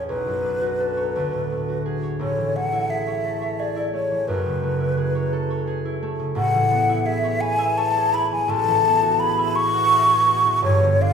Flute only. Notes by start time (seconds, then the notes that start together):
0.08 B4
2.21 C#5
2.56 F#5
2.90 E5
3.60 D5
3.94 C#5
4.28 B4
6.37 F#5
7.06 E5
7.41 G#5
7.78 A5
8.14 B5
8.33 G#5
8.50 A5
9.20 B5
9.56 C#6
10.65 C#5
11.02 F5